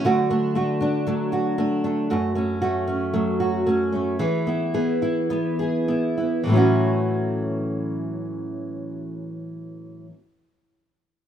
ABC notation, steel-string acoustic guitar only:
X:1
M:4/4
L:1/8
Q:1/4=106
K:A
V:1 name="Steel-string acoustic guitar"
D, D A, D F, F D A, | F,, C A, C F, F C A, | E, E B, E B, G E B, | [A,,E,F,A,CF]8- |
[A,,E,F,A,CF]8 |]